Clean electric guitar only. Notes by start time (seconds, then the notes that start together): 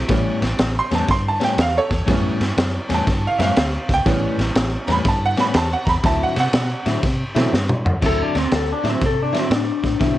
0.08 A2 G3 B3 C#4
0.41 muted clean electric guitar stroke
0.59 muted clean electric guitar stroke
0.91 A2 G3 B3 C#4
1.08 muted clean electric guitar stroke
1.40 A2 G3 B3 C#4
1.57 muted clean electric guitar stroke
1.90 muted clean electric guitar stroke
2.06 A2 G3 B3 C#4
2.40 muted clean electric guitar stroke
2.57 muted clean electric guitar stroke
2.89 A2 G3 B3 C#4
3.06 muted clean electric guitar stroke
3.39 A2 G3 B3 C#4
3.56 muted clean electric guitar stroke
3.88 muted clean electric guitar stroke
4.06 A2 G3 B3 C#4
4.38 muted clean electric guitar stroke
4.56 muted clean electric guitar stroke
4.88 A2 G3 B3 C#4
5.05 muted clean electric guitar stroke
5.37 A2 G3 B3 C#4
5.54 muted clean electric guitar stroke
5.87 muted clean electric guitar stroke
6.03 D3 F#3 C4 E4
6.36 muted clean electric guitar stroke
6.53 muted clean electric guitar stroke
6.86 D3 F#3 C4 E4
7.03 muted clean electric guitar stroke
7.35 D3 F#3 C4 E4
7.52 muted clean electric guitar stroke
7.85 muted clean electric guitar stroke
8.02 D3 F#3 C4 E4
8.34 muted clean electric guitar stroke
8.52 muted clean electric guitar stroke
8.84 D3 F#3 C4 E4
9.01 muted clean electric guitar stroke
9.33 D3 F#3 C4 E4
9.50 muted clean electric guitar stroke
9.83 muted clean electric guitar stroke
10.00 D3 F#3 C4 E4